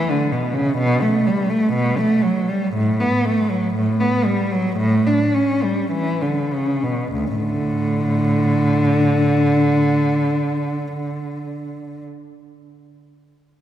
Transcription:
0.10 D3
0.32 B2
0.54 C#3
0.78 B2
1.02 A3
1.27 G3
1.50 A3
1.73 B2
1.98 A3
2.23 F#3
2.49 G3
2.74 A2
3.00 B3
3.25 A3
3.50 F#3
3.75 A2
4.00 B3
4.25 G3
4.51 F#3
4.77 A2
5.07 D4
5.34 C#4
5.63 G3
5.92 E3
6.22 D3
6.52 C#3
6.83 B2
7.13 D2
7.35 A2 D3

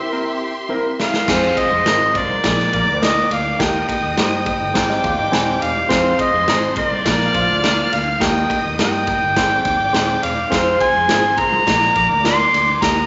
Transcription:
Already playing: G4 E5 C6
0.12 G3 A#3 C4 E4 A#4
0.69 G3 A#3 C4 E4 A#4 C5
1.00 F5, snare
1.14 snare
1.28 F1 G#3 C4 F4 G#4 C5 C6, kick, snare, crash
1.57 D#5, kick, ride
1.71 F1 G#3 G#4
1.85 G#1 G#3 C4 F4 A#4, snare, ride
2.15 A#3 A#4 D5, kick, ride
2.29 C2
2.44 A#1 G#3 A#3 D4 F4 G#4 A#4 D5 D6, kick, snare, ride
2.59 snare
2.73 A#1 A#3 A#4, kick, ride
2.87 D2
3.02 A#3 D4 F4 A#4 D#5, snare, ride
3.31 D2 F5, ride
3.59 D#2 A#3 D#4 G4 A#4 D#5 G5 D#6, kick, snare, ride
3.89 kick, ride
4.03 D#2
4.17 G2 A#3 D#4 G4 C5 G5, snare, ride
4.46 kick, ride
4.61 G1
4.74 G#1 C4 D#4 G#4 C5 D5 D6, kick, snare, ride
4.90 G3 D#4, snare
5.04 D#2 G#3 F4, kick, ride
5.18 G#1 G3 D#4
5.32 D#1 C4 D#4 C5 G#5, snare, ride
5.62 E1 F5, ride
5.89 F1 C4 F4 G#4 C5 C6, kick, snare, ride
6.19 D#5, kick, ride
6.33 F1 G#3 G#4
6.47 G#1 C4 F4 G#4 C5, snare, ride
6.75 A#3 A#4 D5, kick, ride
6.91 C2
7.05 A#1 A#3 D4 F4 A#4 F5 F6, kick, snare, ride
7.21 snare
7.34 A#1 F3 F4, kick, ride
7.50 D2
7.64 A#3 D4 F4 A#4, snare, ride
7.93 D2 F5, ride
8.20 D#2 A#3 D#4 G4 A#4 D#5 G5 D#6, kick, snare, ride
8.50 kick, ride
8.66 D#2
8.79 G2 A#3 D#4 G4 A#4 G5, snare, ride
9.07 kick, ride
9.22 G1
9.36 G#1 C4 D#4 G#4 C5 D5 D6, kick, snare, ride
9.65 D#2, kick, ride
9.80 G#1
9.93 D#1 C4 D#4 G#4 C5, snare, ride
10.23 E1 F5, ride
10.50 F1 C4 F4 G#4 C5 C6, kick, snare, ride
10.81 G#5, kick, ride
10.95 F1 G#3 G#4
11.08 G#1 C4 F4 G#4 C5, snare, ride
11.37 A#3 A#4 A#5, kick, ride
11.52 C2 F4 G#4 C5
11.66 A#1 G#3 A#3 D4 F4 G#4 A#4 D5 D6, kick, snare, ride
11.82 snare
11.94 A#1 A#3 A#4, kick, ride
12.10 D2
12.24 A#3 D4 F4 A#4 D5 C6, snare, ride
12.54 D2, ride
12.82 D#2 A#3 D#4 G4 A#4 D#5 A#5 D#6, kick, snare, ride

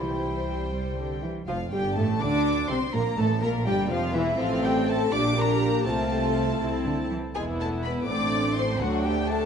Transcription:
Already playing: C2 E3 E4 C5 G5
0.00 G3
0.72 G3
0.97 D3
1.23 E3
1.47 F1 F2 F3 F4 F5
1.72 G1 G2 G3 G4 G5
1.96 A1 A2 A3 A4 A5
2.20 D2 D3 D4 D5 D6
2.69 C2 C3 C4 C5 C6
2.93 A#1 A#2 A#3 A#4 A#5
3.17 A1 A2 A3 A4 A5
3.41 A#1 A#2 A#3 A#4 A#5
3.65 G1 G2 G3 G4 G5
3.89 F1 F2 F3 F4 F5
4.14 E1 E2 E3 E4 E5
4.38 A1 A2 F3 C4 F4 A4 F5
4.61 G3 G4 G5
4.85 A3 A4 A5
5.11 A#1 A#2 D4 G4 D5 D6
5.35 A#3 A#4 A#5
5.85 C2 C3 A3 C4 F4 A4 A5
6.61 C2 C3 C4 E4
6.86 D3
7.11 E3
7.35 E1 E2 G#3 B3 E4 G#4 G#5
7.60 A3 A4 A5
7.83 B3 B4 B5
8.08 A1 A2 A3 C4 D4 D5 D6
8.57 C4 C5 C6
8.81 D2 F#3 D4 F#4 F#5
9.04 G3 G4 G5
9.29 A3 A4 A5

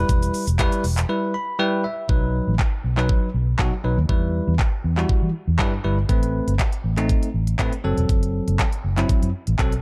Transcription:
Already playing: G3 E4 B4
0.09 E1, kick, closed hi-hat, shaker
0.23 closed hi-hat, shaker
0.34 open hi-hat, shaker
0.47 E1, closed hi-hat, shaker
0.59 G3 E4 B4, kick, clap, closed hi-hat, shaker
0.72 closed hi-hat, shaker
0.84 E1, open hi-hat, shaker
0.97 clap, closed hi-hat, shaker
1.09 G3 E4 B4
1.34 B5
1.59 G3 E4 B4 G5
1.84 E5
2.09 B1 F#3 D#4 B4, kick
2.48 A1
2.59 kick, clap
2.84 B1
2.97 F#3 D#4 B4, clap
3.09 kick
3.34 B1
3.59 B2 F#3 D#4 F#4, kick, clap
3.84 B1 F#3 D#4 B4
3.97 D#2
4.09 E2 G3 E4 B4, kick
4.47 E2
4.59 kick, clap
4.84 E2
4.97 G3 E4 F#4, clap
5.09 kick
5.22 E3
5.47 E2
5.59 G2 G3 E4 B4, kick, clap
5.84 G1 G3 E4 B4
6.09 A1 A3 C4 B4, kick, closed hi-hat
6.23 closed hi-hat
6.47 G1, closed hi-hat
6.59 kick, clap, closed hi-hat
6.72 closed hi-hat
6.84 A1
6.97 A3 C4 D#4, clap, closed hi-hat
7.09 kick, closed hi-hat
7.23 closed hi-hat
7.34 A1
7.47 closed hi-hat
7.59 A2 A3 C4 B4, kick, clap, closed hi-hat
7.73 closed hi-hat
7.84 F#1 F#3 C4 A4
7.98 E1, closed hi-hat
8.09 F#1, kick, closed hi-hat
8.23 closed hi-hat
8.48 F#1, closed hi-hat
8.59 kick, clap, closed hi-hat
8.72 closed hi-hat
8.84 F#1
8.97 F#3 C4 E4, clap, closed hi-hat
9.09 kick, closed hi-hat
9.23 F#2, closed hi-hat
9.47 A1, closed hi-hat
9.59 F#3 C4 A4, kick, clap, closed hi-hat
9.72 closed hi-hat

